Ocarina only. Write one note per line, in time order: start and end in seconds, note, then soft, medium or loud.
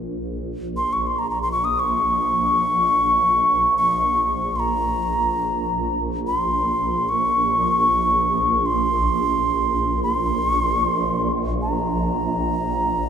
0.77 0.94 C6 medium
0.93 1.08 C#6 medium
1.07 1.20 C6 medium
1.19 1.30 A#5 medium
1.30 1.41 A#5 medium
1.42 1.51 C6 medium
1.52 1.66 C#6 medium
1.65 1.81 D#6 medium
1.79 3.77 C#6 medium
3.77 4.57 C#6 medium
4.56 6.02 A#5 medium
4.56 4.61 C6 medium
6.27 7.10 C6 medium
7.09 8.67 C#6 medium
8.66 10.03 C6 medium
10.03 11.32 C6 medium
11.62 13.09 A#5 medium